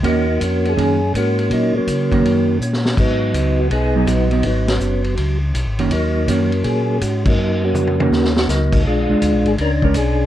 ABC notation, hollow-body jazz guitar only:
X:1
M:4/4
L:1/8
Q:"Swing" 1/4=163
K:Ebm
V:1 name="Hollow-body jazz guitar"
[E,B,DG] z3 [E,B,DG] z3 | z3 [E,B,DG]3 z2 | z4 z [G,CE]2 [G,CE] | z6 z [E,B,DG] |
z2 [E,B,DG] z4 z | z3 [E,B,DG]3 z2 | z [A,=D]3 z [A,^CD] z2 |]